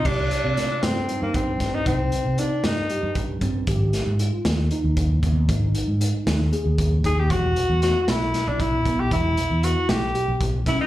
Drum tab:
CC |x------|-------|-------|-------|
HH |-xxxxxx|xxxxxxx|xxxxxxx|xxxxxxx|
SD |--oo--o|---o---|-o-o---|---o---|
BD |o----oo|o----oo|o----oo|o----oo|

CC |-------|-------|
HH |xxxxxxx|xxxxxxx|
SD |--ooo--|---o--o|
BD |o----oo|o----oo|